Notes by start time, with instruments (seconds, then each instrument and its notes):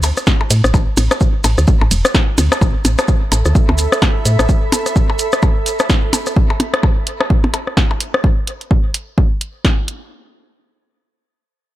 Already playing: fm bass D2
0.03 closed hi-hat, ride, percussion blips, maracas
0.17 cross-stick, maracas
0.27 kick, snare, maracas
0.41 percussion blips
0.50 fm bass A2, closed hi-hat, ride, maracas
0.64 fm bass A1, cross-stick, maracas
0.74 fm bass A1, kick, percussion blips, maracas
0.97 fm bass A1, closed hi-hat, ride, percussion blips, maracas
1.11 cross-stick, closed hi-hat, percussion blips, maracas
1.20 kick, maracas
1.44 fm bass A1, closed hi-hat, ride, percussion blips, maracas
1.58 fm bass D2, cross-stick, maracas
1.67 kick, maracas
1.81 fm bass A1, percussion blips
1.91 fm bass E1, closed hi-hat, ride, maracas
2.05 cross-stick, maracas
2.15 kick, snare, percussion blips, maracas
2.38 fm bass D2, closed hi-hat, ride, percussion blips, maracas
2.52 cross-stick, percussion blips, maracas
2.61 fm bass A1, ambient pad A4, kick, percussion blips, maracas
2.73 ambient pad E5
2.85 fm bass A1, closed hi-hat, percussion blips, maracas
2.98 ambient pad B5, cross-stick, closed hi-hat, percussion blips, maracas
3.08 kick, maracas
3.32 fm bass A1, closed hi-hat, percussion blips, maracas
3.45 fm bass D2, cross-stick, maracas
3.55 kick, maracas
3.69 fm bass D2, percussion blips
3.78 closed hi-hat, maracas
3.92 cross-stick, maracas
4.02 kick, snare, percussion blips, maracas
4.25 fm bass A2, closed hi-hat, maracas
4.39 fm bass A1, cross-stick, percussion blips, maracas
4.49 kick, maracas
4.72 closed hi-hat, percussion blips, maracas
4.86 cross-stick, closed hi-hat, maracas
4.96 kick, maracas
5.10 percussion blips
5.19 closed hi-hat, maracas
5.32 cross-stick, maracas
5.42 kick, percussion blips, maracas
5.66 closed hi-hat, maracas
5.79 cross-stick, percussion blips, maracas
5.90 kick, snare, maracas
6.13 closed hi-hat, percussion blips, maracas
6.26 cross-stick, maracas
6.36 kick
6.50 percussion blips
6.60 closed hi-hat, percussion blips
6.74 cross-stick, closed hi-hat
6.83 kick, percussion blips
7.07 closed hi-hat
7.21 cross-stick, percussion blips
7.30 kick
7.44 percussion blips
7.54 closed hi-hat, percussion blips
7.67 cross-stick
7.77 kick, snare
7.91 percussion blips
8.00 closed hi-hat
8.14 cross-stick
8.24 kick
8.47 closed hi-hat
8.61 closed hi-hat
8.71 kick
8.94 closed hi-hat
9.18 kick
9.41 closed hi-hat
9.65 kick, snare
9.88 closed hi-hat